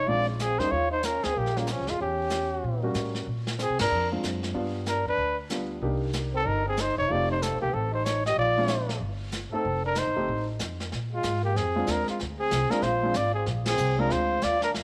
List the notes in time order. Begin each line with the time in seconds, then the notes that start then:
0.06 A#1 G#3 C4 D4 F4 D5, brush sweep
0.28 G#3 F4
0.39 C4 G#4, snare, hi-hat pedal
0.59 E2 G3 A#3 C#4 D#4 C5, snare
0.71 D#2 F4 C#5, brush sweep
0.91 D#4 C5
1.03 C#4 A#4, snare, hi-hat pedal
1.23 D2 C4 G#4, snare
1.35 A#1 A#3 G4, brush sweep
1.46 snare
1.55 C#3 G3 A#3 C#4 F4, snare
1.67 F3, snare, hi-hat pedal
1.71 C#4
1.80 C#2
1.87 D#2 G#3 F4, snare
1.99 E2 C#4 G4, brush sweep
2.30 snare, hi-hat pedal
2.63 A#2, brush sweep
2.83 G3 A#3 C#4 F#4
2.94 A2, snare, hi-hat pedal
3.15 snare
3.26 A#2, brush sweep
3.47 snare
3.59 C4 G#4, snare, hi-hat pedal
3.70 C3
3.79 G#2 D4 A#4, snare, ride
3.91 F2, brush sweep
4.12 G#3 C4 D4 F4
4.23 F#2, snare, hi-hat pedal
4.43 snare
4.54 G2 G3 B3 D4 F4, brush sweep
4.86 D4 A#4, snare, hi-hat pedal
5.06 F2 D4 B4
5.17 D2, brush sweep
5.50 G3 B3 D4 F4, snare, hi-hat pedal
5.82 C2 A#3 D4 D#4 G4, brush sweep
6.13 snare, hi-hat pedal
6.33 C4 A4
6.46 G1 D#4 A#4, brush sweep
6.66 C4 G#4
6.77 D#4 C5, snare, hi-hat pedal
6.97 E1 D#4 C#5
7.09 F1 A3 C4 D#4 F4 G4 D5, brush sweep
7.29 D#4 C5
7.42 C4 A4, snare, hi-hat pedal
7.53 A1
7.60 C2 A#3 G4
7.73 A1 C4 A4, brush sweep
7.92 D#4 C5
8.05 D#4 C#5, snare, hi-hat pedal
8.26 G4 D#5, snare
8.36 A#1 F4 D5, brush sweep
8.58 G#3 C4 D4 F4
8.67 snare, hi-hat pedal
8.89 snare
9.00 G1, brush sweep
9.32 snare, hi-hat pedal
9.51 A3 C4 D#4 A4, muted upright bass stroke
9.64 F1, brush sweep
9.84 D4 A#4
9.95 D#4 C5, snare, hi-hat pedal
10.07 G1
10.16 F#1 A3 C4 D#4 G4
10.28 A1, brush sweep
10.59 F2, snare, hi-hat pedal
10.80 snare
10.92 A#2, brush sweep, snare
11.12 G#3 F4
11.23 G#2, snare, hi-hat pedal
11.43 A#3 G4
11.55 F2 C4 G#4, brush sweep, snare
11.76 G#3 C4 D4 F4
11.86 D#2 D4, snare, hi-hat pedal
11.91 A#4
12.06 G#3 F4, muted upright bass stroke, snare
12.19 D2, brush sweep, snare
12.40 C4 G#4
12.51 C2, snare, hi-hat pedal
12.70 G#3 C4 D4 F4 A#4, muted upright bass stroke, snare
12.82 A#1 F4 C5, brush sweep, snare
13.03 G#3 C4 D4 F4
13.14 G#1 F4 D5, snare, hi-hat pedal
13.34 C4 G#4
13.46 A#1, brush sweep, snare
13.65 C4 G#4, snare, ride
13.77 C2, hi-hat pedal
13.97 G#3 C4 D4 F4 A#4
14.10 D2 F4 C5, brush sweep, snare
14.41 D#2 F4 D5, snare, hi-hat pedal
14.60 D4 A#4, snare
14.74 F2, brush sweep, snare